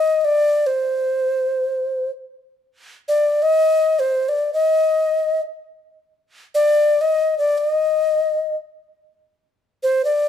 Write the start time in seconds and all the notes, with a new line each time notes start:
Already playing: D#5
0.21 D5 D#5
0.67 C5
3.08 D5
3.42 D#5
3.99 C5
4.29 D5
4.54 D#5
6.55 D5
7.01 D#5
7.38 D5
7.58 D5
7.70 D#5
9.83 C5
10.05 D5